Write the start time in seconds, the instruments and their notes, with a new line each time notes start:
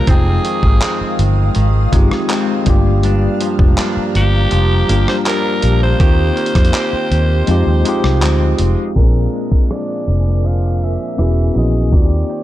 Already playing: clean electric guitar F3 A#3, alto saxophone A#4, ambient pad F5
0.06 fingered electric bass F1, clean electric guitar F2 C4, tine electric piano G#3 C4 D#4 F4, ambient pad G#3 D#6, alto saxophone G#4, kick, closed hi-hat
0.11 tine electric piano G5
0.45 clean electric guitar D#3, closed hi-hat
0.63 fingered electric bass G#1, kick
0.82 clean electric guitar D#3 G#3 C4, clap, closed hi-hat
1.01 muted fingered electric bass stroke
1.19 fingered electric bass G1, closed hi-hat
1.55 fingered electric bass G#1, clean electric guitar D#3, closed hi-hat
1.91 fingered electric bass G1, tine electric piano G#3 C4 D#4 F4, clean electric guitar G#3, kick, closed hi-hat
1.96 tine electric piano G4
2.11 cross-stick
2.29 clean electric guitar D#3 G#3 C4, clap, closed hi-hat
2.65 fingered electric bass G1, clean electric guitar G2, tine electric piano G3 A3 D4 F4, ambient pad G4 A#5, kick, closed hi-hat
2.70 tine electric piano A#3 G4
3.03 clean electric guitar G2 D4, closed hi-hat
3.41 clean electric guitar F3, closed hi-hat
3.59 fingered electric bass F1, kick
3.78 clean electric guitar F3 A#3 D4, clap, closed hi-hat
3.97 muted fingered electric bass stroke
4.15 fingered electric bass G1, alto saxophone G4, closed hi-hat
4.51 fingered electric bass F1, clean electric guitar F3, closed hi-hat
4.87 fingered electric bass G1, tine electric piano G3 A#3 D4 F4, clean electric guitar A#3, closed hi-hat
4.92 tine electric piano G4
5.08 alto saxophone C5, cross-stick
5.26 clean electric guitar F3 A#3 D4, alto saxophone A#4, clap, closed hi-hat
5.62 fingered electric bass A#1, closed hi-hat
5.83 alto saxophone C5
5.99 fingered electric bass D#2, clean electric guitar D#3 G4, tine electric piano A#3 C4 D#4 F4, ambient pad D#5 C6, kick, closed hi-hat
6.03 tine electric piano G4
6.37 clean electric guitar A#3, closed hi-hat
6.46 closed hi-hat
6.55 fingered electric bass F2, kick, cross-stick, closed hi-hat
6.65 closed hi-hat
6.74 clean electric guitar A#3 C4 G4, clap, closed hi-hat
6.93 muted fingered electric bass stroke
7.11 fingered electric bass D#2, closed hi-hat
7.47 fingered electric bass F2, clean electric guitar F2, tine electric piano G#3 C4 D#4 F4, ambient pad G#3 F5 D#6, closed hi-hat
7.51 tine electric piano G4
7.67 fingered electric bass D#2
7.84 tine electric piano G#3 C4 D#4 F4, clean electric guitar G#3, closed hi-hat
7.88 tine electric piano G4
8.04 fingered electric bass C2, cross-stick
8.22 fingered electric bass D2, clean electric guitar G#3 C4, clap, closed hi-hat
8.59 fingered electric bass F1, closed hi-hat
8.95 fingered electric bass A#1, clean electric guitar A#2 D4, tine electric piano A#3 C4 C#4 F4, ambient pad A#4 G#5 D6, alto saxophone A#4, kick, closed hi-hat
9.00 tine electric piano G#4
9.04 tine electric piano D4
9.33 clean electric guitar G#3, closed hi-hat
9.52 kick
9.70 clean electric guitar F3 G#3 D4, alto saxophone D5, cross-stick, closed hi-hat
10.07 fingered electric bass F1, closed hi-hat
10.44 clean electric guitar F3, alto saxophone F5, closed hi-hat
10.82 alto saxophone E5, closed hi-hat
11.17 fingered electric bass E1, clean electric guitar E3, tine electric piano B3 C#4 E4 F#4, cross-stick, closed hi-hat
11.22 tine electric piano G#4
11.54 fingered electric bass A#1, tine electric piano B3 C#4 E4 F#4, alto saxophone D#5, closed hi-hat
11.58 tine electric piano G#4
11.91 fingered electric bass D#2, clean electric guitar D#3 G4, tine electric piano A#3 C4 D#4 F4, ambient pad C5 G5 A#5, alto saxophone D5, kick, closed hi-hat
11.96 tine electric piano F#4
12.02 tine electric piano G4
12.29 clean electric guitar C4, closed hi-hat